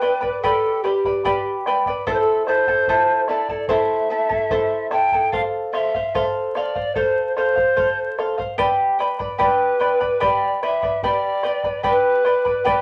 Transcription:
Already playing: B4
0.01 B4 D5 G5 B5, bombo rim
0.21 B4 D5 B5, bombo low
0.42 G4 A4 B4 D5 G5 B5, bombo low
0.83 G4 B4 D5 G5 B5, bombo rim
1.04 B4 D5 B5, bombo low
1.24 G4 B4 D5 G5 B5, bombo low
1.66 B4 D5 G5 B5, bombo rim
1.86 B4 D5 B5, bombo low
2.07 E4 A4 C5 E5 A5, bombo low
2.13 C5
2.20 A4
2.46 E4 A4 C5 E5 A5, bombo rim
2.67 E4 A4 A5, bombo low
2.87 E4 A4 C5 E5 A5, bombo low
3.27 E4 A4 D5 E5 A5, bombo rim
3.49 E4 A4 A5, bombo low
3.68 E4 A4 C5 E5 A5, bombo low
4.10 E4 A4 E5 A5
4.29 E4 A4 A5, bombo low
4.50 E4 A4 C5 E5 A5, bombo low
4.91 E4 A4 E5 G5 A5, bombo rim
5.12 E4 A4 A5, bombo low
5.32 A4 C5 F5, bombo low
5.73 A4 C5 E5 F5, bombo rim
5.94 C5 F5, bombo low
6.14 A4 C5 F5, bombo low
6.55 A4 C5 D5 F5, bombo rim
6.75 C5 F5, bombo low
6.95 A4 C5 F5, bombo low
7.35 A4 C5 F5, bombo rim
7.56 C5 F5, bombo low
7.76 A4 C5 F5, bombo low
8.18 A4 C5 F5, bombo rim
8.38 C5 F5, bombo low
8.58 G4 B4 D5 G5 B5, bombo low
8.99 B4 D5 G5 B5, bombo rim
9.19 B4 D5 B5, bombo low
9.38 G4 B4 D5 G5 B5, bombo low
9.80 B4 D5 G5 B5, bombo rim
10.00 B4 D5 B5, bombo low
10.20 G4 B4 D5 G5 B5, bombo low
10.63 B4 D5 E5 G5 B5, bombo rim
10.82 B4 D5 B5, bombo low
11.03 G4 B4 D5 G5 B5, bombo low
11.43 B4 D5 G5 B5, bombo rim
11.63 B4 D5 B5, bombo low
11.83 G4 B4 D5 G5 B5, bombo low
11.87 B4
12.25 B4 D5 G5 B5, bombo rim
12.45 B4 D5 B5, bombo low
12.65 G4 B4 D5 G5 B5, bombo low
12.69 B4

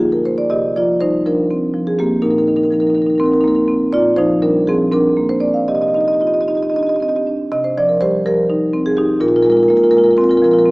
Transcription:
Already playing: G2 A#3
0.00 D3 G#4
0.12 A#4
0.26 A#3 C5
0.38 D5
0.50 C3 G4 D#5
0.76 F3 F4 D5
1.01 G3 D#4 C5
1.26 F3 D4 A#4
1.51 C4
1.74 F3
1.87 G#4
1.99 A#3 C4 G4
2.22 A#2 D#4 A#4
2.30 D#4 A#4
2.38 D#4 A#4
2.47 D#3 D#4 A#4
2.56 D#4 A#4
2.63 D#4 A#4
2.71 F3 D#4 A#4
2.80 D#4 A#4
2.87 D#4 A#4
2.95 D#3 D#4 A#4
3.02 A#4
3.06 D#4 A#4
3.15 D#4 A#4
3.20 C4
3.24 D#4 A#4
3.32 D#4 A#4
3.40 A#3 D#4 A#4
3.48 D#4 A#4
3.55 D#4 A#4
3.68 C4
3.93 A#2 F4 D5
4.16 F3 D#4 C5
4.42 G3 D4 A#4
4.67 F3 C4 G#4
4.92 C4 D4 A#4
5.17 A#3
5.29 C5
5.40 C4 D5
5.54 F5
5.68 C3 G4 D#5
5.75 G4 D#5
5.82 G4 D#5
5.88 G4 D#5
5.94 D#4 G4 D#5
6.01 D#5
6.05 G4 D#5
6.13 G4 D#5
6.20 F4 G4 D#5
6.27 G4 D#5
6.34 G4 D#5
6.41 G4 D#5
6.48 D#4 G4 D#5
6.55 G4 D#5
6.63 G4 D#5
6.70 G4 D#5
6.74 D4 D#5
6.79 G4 D#5
6.87 G4 D#5
6.94 G4 D#5
7.00 C4 G4 D#5
7.08 G4 D#5
7.16 G4 D#5
7.27 D4
7.52 C3 D#5
7.64 C5
7.77 F3 D5
7.89 A#4
8.01 G3 G4 C5
8.26 F3 G4 A#4
8.50 D#4
8.73 C4
8.86 G#4
8.97 D#4 G4
9.20 A#2 F4 A#4
9.28 F4 A#4
9.36 F4 A#4
9.43 G#3 F4 A#4
9.50 F4 A#4
9.57 F4 A#4
9.63 A#4
9.68 A#3 F4 A#4
9.76 F4 A#4
9.84 F4 A#4
9.90 G#3 F4 A#4
9.97 F4 A#4
10.04 F4 A#4
10.10 F4 A#4
10.17 C4 A#4
10.21 F4 A#4
10.29 F4 A#4
10.37 F4 A#4
10.42 F3 F4 A#4
10.51 F4 A#4
10.59 A#4
10.65 C4

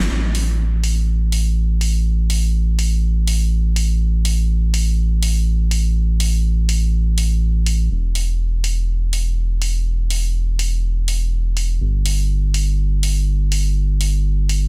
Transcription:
0.10 A1
0.35 open hi-hat
0.84 open hi-hat
1.32 open hi-hat
1.81 open hi-hat
2.30 open hi-hat
2.79 open hi-hat
3.27 open hi-hat
3.76 open hi-hat
4.25 open hi-hat
4.74 open hi-hat
5.23 open hi-hat
5.71 open hi-hat
6.20 open hi-hat
6.69 open hi-hat
7.18 open hi-hat
7.66 open hi-hat
7.91 E1
8.15 open hi-hat
8.64 open hi-hat
9.13 open hi-hat
9.62 open hi-hat
10.10 open hi-hat
10.59 open hi-hat
11.08 open hi-hat
11.57 open hi-hat
11.81 G1
12.06 open hi-hat
12.54 open hi-hat
13.03 open hi-hat
13.52 open hi-hat
14.01 open hi-hat
14.49 open hi-hat

